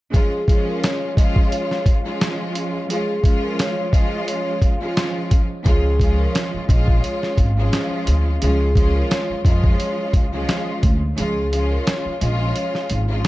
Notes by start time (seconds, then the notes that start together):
0.12 F3 G#3 C#4 F4 G#4, kick, closed hi-hat
0.47 F3 G#3 C#4 F4, kick, closed hi-hat
0.68 A#4
0.80 C#5, snare, closed hi-hat
1.16 F3 G#3 C#4 F4, kick, closed hi-hat
1.36 kick
1.50 C#5, closed hi-hat
1.71 snare
1.86 kick, closed hi-hat
2.04 F3 G#3 C#4 F4
2.21 snare, closed hi-hat
2.55 closed hi-hat
2.89 F3 G#3 C#4 F4 G#4, closed hi-hat
3.22 F3 G#3 C#4 F4, kick, closed hi-hat
3.44 A#4
3.59 C#5, snare, closed hi-hat
3.91 F3 G#3 C#4 F4 D#5, kick, closed hi-hat
4.27 C#5, closed hi-hat
4.62 F5, kick, closed hi-hat
4.80 F3 G#3 C#4 F4
4.97 snare, closed hi-hat
5.31 kick, closed hi-hat
5.64 C#2 F3 G#3 C#4 F4 G#4, kick, closed hi-hat
5.99 F3 G#3 C#4 F4, kick, closed hi-hat
6.18 A#4
6.32 C#5, snare, closed hi-hat
6.54 muted upright bass stroke
6.68 A#1 F3 G#3 C#4 F4, kick, closed hi-hat
6.88 kick
7.02 C#5, closed hi-hat
7.23 snare
7.38 G#1, kick, closed hi-hat
7.56 F3 G#3 C#4 F4
7.73 snare, closed hi-hat
8.07 D2, closed hi-hat
8.40 C#2 F3 G#3 C#4 F4 G#4, closed hi-hat
8.74 F3 G#3 C#4 F4, kick, closed hi-hat
8.95 A#4
9.10 C#5, snare, closed hi-hat
9.30 muted upright bass stroke
9.43 F2 F3 G#3 C#4 F4, kick, closed hi-hat
9.64 kick
9.79 C#5, closed hi-hat
10.13 C#2 F5, kick, closed hi-hat
10.32 F3 G#3 C#4 F4
10.49 snare, closed hi-hat
10.83 D2, kick, closed hi-hat
11.16 C#2 F3 G#3 C#4 F4 G#4, closed hi-hat
11.51 F3 G#3 C#4 F4, closed hi-hat
11.71 A#4
11.84 C#5, snare, closed hi-hat
12.06 muted upright bass stroke
12.19 A#1 F3 G#3 C#4 F4 D#5, closed hi-hat
12.54 C#5, closed hi-hat
12.75 snare
12.90 G#1 F5, closed hi-hat
13.08 F3 G#3 C#4 F4
13.25 closed hi-hat